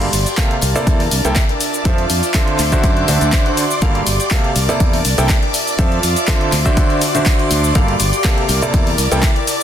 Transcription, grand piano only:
0.38 0.54 C3 medium
0.38 0.54 A#3 medium
0.38 0.54 G4 medium
0.38 0.54 A4 medium
0.38 0.54 F5 loud
0.76 1.01 C3 medium
0.76 1.01 A#3 medium
0.76 1.01 E4 medium
0.76 1.01 A4 medium
0.76 1.01 D5 loud
1.25 1.40 C3 medium
1.25 1.40 A#3 medium
1.25 1.40 E4 medium
1.25 1.40 A4 medium
1.25 1.40 G5 loud
1.85 2.02 F3 medium
1.85 2.02 C4 medium
1.85 2.02 F4 medium
1.85 2.02 A4 medium
1.85 2.02 E5 loud
2.35 2.58 D3 loud
2.35 2.58 C4 medium
2.35 2.58 F4 medium
2.35 2.58 A4 medium
2.35 2.58 E5 loud
2.72 3.06 D3 loud
2.72 3.06 D4 medium
2.72 3.06 F#4 medium
2.72 3.06 C5 medium
2.72 3.06 E5 loud
3.08 3.29 D3 medium
3.08 3.29 D4 medium
3.08 3.29 F#4 medium
3.08 3.29 C5 medium
3.08 3.29 E5 medium
3.33 3.44 D3 medium
3.33 3.44 D4 medium
3.33 3.44 F#4 medium
3.33 3.44 C5 medium
3.33 3.44 E5 medium
3.46 3.61 D3 medium
3.46 3.61 D4 medium
3.46 3.61 F#4 medium
3.46 3.61 C5 medium
3.46 3.61 F#5 medium
3.82 3.99 G2 medium
3.82 3.99 A#3 medium
3.82 3.99 G4 medium
3.82 3.99 A4 medium
3.82 3.99 F5 medium
4.31 4.48 C3 medium
4.31 4.48 A#3 medium
4.31 4.48 G4 medium
4.31 4.48 A4 medium
4.31 4.48 F5 loud
4.69 4.94 C3 medium
4.69 4.95 A#3 medium
4.69 4.94 E4 medium
4.69 4.94 A4 medium
4.69 4.94 D5 loud
5.18 5.33 C3 medium
5.18 5.33 A#3 medium
5.18 5.33 E4 medium
5.18 5.33 A4 medium
5.18 5.33 G5 loud
5.79 5.95 F3 medium
5.79 5.95 C4 medium
5.79 5.95 F4 medium
5.79 5.95 A4 medium
5.79 5.95 E5 loud
6.28 6.51 D3 loud
6.28 6.51 C4 medium
6.28 6.51 F4 medium
6.28 6.51 A4 medium
6.28 6.51 E5 loud
6.66 6.99 D3 loud
6.66 6.99 D4 medium
6.66 6.99 F#4 medium
6.66 6.99 C5 medium
6.66 6.99 E5 loud
7.15 7.73 D3 medium
7.15 7.73 D4 medium
7.15 7.73 F#4 medium
7.15 7.73 C5 medium
7.15 7.73 E5 medium
7.75 7.92 G2 medium
7.75 7.92 A#3 medium
7.75 7.92 G4 medium
7.75 7.92 A4 medium
7.75 7.92 F5 loud
8.25 8.41 C3 medium
8.25 8.41 A#3 medium
8.25 8.41 G4 medium
8.25 8.41 A4 medium
8.25 8.41 F5 loud
8.62 8.88 C3 medium
8.62 8.88 A#3 medium
8.62 8.88 E4 medium
8.62 8.88 A4 medium
8.62 8.88 D5 loud
9.12 9.27 C3 medium
9.12 9.27 A#3 medium
9.12 9.27 E4 medium
9.12 9.27 A4 medium
9.12 9.27 G5 loud

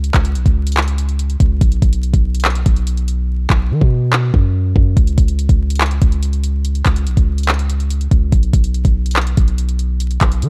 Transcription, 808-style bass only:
0.00 0.11 C#2 loud
0.14 0.37 C#2 loud
0.35 0.45 B1 medium
0.46 1.36 C#2 loud
1.40 1.60 C#2 loud
1.61 1.81 B1 loud
1.82 2.12 B1 loud
2.14 2.64 B1 loud
2.66 3.47 B1 loud
3.50 3.72 B1 loud
3.71 3.81 D#3 loud
3.81 4.32 B2 loud
4.34 4.74 F#2 loud
4.76 4.96 F#2 loud
4.97 5.17 C#2 loud
5.18 5.48 C#2 loud
5.49 6.00 C#2 loud
6.02 6.82 C#2 loud
6.86 7.08 C#2 loud
7.07 7.16 B1 loud
7.17 8.08 C#2 loud
8.11 8.32 C#2 loud
8.32 8.53 B1 loud
8.53 8.84 B1 loud
8.85 9.35 B1 loud
9.37 10.18 B1 loud
10.21 10.44 B1 loud
10.42 10.49 D#3 loud

